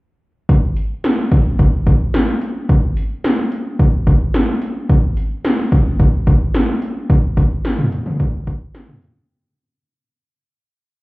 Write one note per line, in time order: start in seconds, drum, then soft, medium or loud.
0.49 kick loud
0.49 closed hi-hat medium
0.77 closed hi-hat medium
1.04 snare loud
1.04 closed hi-hat medium
1.32 kick medium
1.32 closed hi-hat medium
1.59 kick medium
1.59 closed hi-hat medium
1.87 kick medium
1.87 closed hi-hat medium
2.14 snare loud
2.14 closed hi-hat medium
2.41 closed hi-hat medium
2.69 kick medium
2.69 closed hi-hat medium
2.97 closed hi-hat medium
3.24 snare loud
3.24 closed hi-hat medium
3.52 closed hi-hat medium
3.79 kick medium
3.79 closed hi-hat medium
4.07 kick medium
4.07 closed hi-hat medium
4.34 snare loud
4.34 closed hi-hat medium
4.62 closed hi-hat medium
4.89 kick loud
4.89 closed hi-hat medium
5.17 closed hi-hat medium
5.44 snare loud
5.44 closed hi-hat medium
5.72 kick medium
5.72 closed hi-hat medium
6.00 kick medium
6.00 closed hi-hat medium
6.27 kick medium
6.27 closed hi-hat medium
6.54 snare loud
6.54 closed hi-hat medium
6.82 closed hi-hat medium
7.10 kick loud
7.10 closed hi-hat medium
7.37 kick loud
7.37 closed hi-hat medium
7.65 snare loud
7.65 closed hi-hat medium
7.78 mid tom medium
7.92 closed hi-hat medium
8.06 mid tom medium
8.20 kick medium
8.20 closed hi-hat medium
8.47 kick medium
8.47 closed hi-hat medium
8.75 snare loud
8.75 closed hi-hat medium
8.88 mid tom medium
9.02 closed hi-hat medium